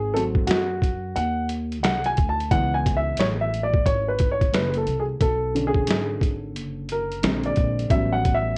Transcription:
0.00 0.45 G#1 loud
0.00 0.15 G#4 medium
0.14 0.63 F#3 medium
0.14 0.63 A3 soft
0.14 0.63 C4 medium
0.14 0.21 A4 medium
0.14 closed hi-hat medium
0.35 kick medium
0.47 1.12 F#2 medium
0.47 1.17 F#4 medium
0.47 snare loud
0.47 closed hi-hat loud
0.82 kick medium
0.82 closed hi-hat medium
1.16 1.83 D#2 medium
1.16 1.47 F#5 medium
1.16 closed hi-hat medium
1.49 closed hi-hat medium
1.72 closed hi-hat soft
1.83 2.15 C2 medium
1.83 2.07 F#5 medium
1.83 snare loud
1.83 closed hi-hat medium
2.04 2.27 G#5 loud
2.04 closed hi-hat soft
2.17 2.50 D2 medium
2.17 kick medium
2.17 closed hi-hat medium
2.29 2.50 A5 medium
2.40 closed hi-hat soft
2.51 3.15 C#2 medium
2.51 5.17 E3 medium
2.51 5.17 G#3 medium
2.51 5.17 B3 medium
2.51 2.74 F#5 loud
2.51 kick loud
2.51 closed hi-hat medium
2.74 2.97 G#5 medium
2.86 kick medium
2.86 closed hi-hat medium
2.96 3.19 E5 medium
3.17 3.82 A1 medium
3.17 3.24 C#5 medium
3.17 snare loud
3.17 closed hi-hat medium
3.41 3.64 E5 medium
3.53 closed hi-hat medium
3.63 3.84 D5 medium
3.73 kick medium
3.85 4.50 G#1 medium
3.85 4.09 C#5 medium
3.85 kick medium
3.85 closed hi-hat medium
4.08 4.29 B4 medium
4.19 kick medium
4.19 closed hi-hat medium
4.31 4.54 C#5 medium
4.41 kick medium
4.41 closed hi-hat soft
4.53 4.85 F#1 medium
4.53 4.75 B4 medium
4.53 snare medium
4.53 closed hi-hat medium
4.74 5.00 A4 medium
4.74 closed hi-hat soft
4.87 5.19 C2 medium
4.87 closed hi-hat medium
5.00 5.05 G#4 medium
5.20 5.85 B1 loud
5.20 5.54 A4 medium
5.20 kick loud
5.20 closed hi-hat medium
5.55 7.19 D3 medium
5.55 7.20 C#4 medium
5.55 7.20 A4 medium
5.55 closed hi-hat medium
5.67 6.30 G#4 medium
5.75 kick medium
5.87 6.55 G#1 loud
5.87 snare loud
5.87 closed hi-hat loud
6.21 kick medium
6.21 closed hi-hat medium
6.55 7.19 F#1 loud
6.55 closed hi-hat medium
6.89 7.48 A#4 medium
6.89 closed hi-hat medium
7.12 closed hi-hat soft
7.23 7.55 A#1 loud
7.23 7.87 D3 medium
7.23 7.87 G#3 soft
7.23 7.88 C4 medium
7.23 snare loud
7.23 closed hi-hat loud
7.43 7.92 D5 medium
7.43 closed hi-hat soft
7.56 7.89 A#1 medium
7.56 kick medium
7.56 closed hi-hat medium
7.79 closed hi-hat soft
7.90 8.54 A1 medium
7.90 8.58 F#3 medium
7.90 8.58 G3 medium
7.90 8.58 B3 soft
7.90 8.58 C#4 medium
7.90 8.14 E5 loud
7.90 kick loud
7.90 closed hi-hat medium
8.13 8.36 F#5 medium
8.25 kick medium
8.25 closed hi-hat medium
8.35 8.58 E5 loud

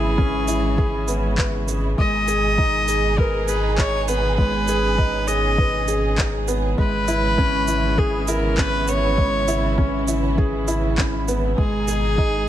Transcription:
0.00 1.95 G#1 medium
0.00 1.94 C#3 medium
0.00 1.94 E3 medium
0.00 1.98 G#3 medium
0.00 11.54 G#3 medium
0.00 1.08 B3 medium
0.00 0.18 C#4 medium
0.00 0.48 E4 loud
0.00 1.94 E4 medium
0.00 0.78 G#4 loud
0.00 1.68 G#4 loud
0.18 0.35 C#4 loud
0.18 kick loud
0.48 0.77 E4 medium
0.48 shaker medium
0.78 1.07 G#4 loud
0.78 kick loud
1.08 1.25 B3 medium
1.08 shaker medium
1.38 1.67 B4 medium
1.38 kick medium
1.38 clap medium
1.68 1.97 G#4 medium
1.68 shaker medium
1.98 6.75 G#1 medium
1.98 6.74 B2 medium
1.98 6.74 D#3 medium
1.98 2.27 G#3 medium
1.98 4.36 D#4 medium
1.98 6.74 G#4 medium
1.98 3.20 D#5 loud
1.98 kick loud
2.28 2.56 G#4 loud
2.28 shaker medium
2.58 2.75 D#4 loud
2.58 kick loud
2.88 3.17 G#4 medium
2.88 shaker medium
3.18 3.50 A#4 loud
3.18 3.47 B4 loud
3.18 kick loud
3.48 3.77 G#4 loud
3.48 3.78 B4 medium
3.48 shaker medium
3.78 4.07 D#4 medium
3.78 4.01 C#5 loud
3.78 kick loud
3.78 clap medium
4.01 4.09 C#5 medium
4.08 4.25 B3 loud
4.08 4.37 B4 loud
4.08 shaker medium
4.38 4.67 G#3 medium
4.38 6.76 C#4 medium
4.38 5.29 B4 loud
4.38 kick loud
4.68 4.97 G#4 loud
4.68 shaker medium
4.98 5.15 D#4 loud
4.98 kick loud
5.28 5.57 G#4 medium
5.28 6.18 D#5 loud
5.28 shaker medium
5.58 5.87 B4 loud
5.58 kick loud
5.88 6.17 G#4 loud
5.88 shaker medium
6.18 6.47 D#4 medium
6.18 kick loud
6.18 clap medium
6.48 6.65 B3 loud
6.48 shaker medium
6.78 11.55 G#1 medium
6.78 11.54 C#3 medium
6.78 11.54 E3 medium
6.78 7.06 G#3 medium
6.78 11.54 B3 medium
6.78 11.54 E4 medium
6.78 8.00 B4 loud
6.78 kick loud
7.08 7.37 E4 loud
7.08 shaker medium
7.38 7.55 C#4 loud
7.38 kick loud
7.68 7.97 E4 medium
7.68 shaker medium
7.98 8.27 G#4 loud
7.98 8.30 G#4 loud
7.98 kick loud
8.28 8.57 E4 loud
8.28 8.60 A#4 loud
8.28 shaker medium
8.58 8.87 C#4 medium
8.58 8.90 B4 loud
8.58 kick loud
8.58 clap medium
8.88 9.05 B3 medium
8.88 10.08 C#5 loud
8.88 shaker medium
9.18 9.47 G#3 medium
9.18 kick loud
9.48 9.77 E4 loud
9.48 shaker medium
9.78 9.95 C#4 loud
9.78 kick loud
10.08 10.37 E4 medium
10.08 shaker medium
10.38 10.67 G#4 loud
10.38 kick loud
10.68 10.97 E4 loud
10.68 shaker medium
10.98 11.27 C#4 medium
10.98 kick loud
10.98 clap medium
11.28 11.45 B3 loud
11.28 shaker medium
11.58 12.49 G#1 medium
11.58 12.49 B2 medium
11.58 12.49 D#3 medium
11.58 11.87 G#3 medium
11.58 12.49 G#3 medium
11.58 12.49 D#4 medium
11.58 12.49 G#4 loud
11.58 12.49 G#4 medium
11.58 kick loud
11.88 12.17 G#4 loud
11.88 shaker medium
12.18 12.35 D#4 loud
12.18 kick loud

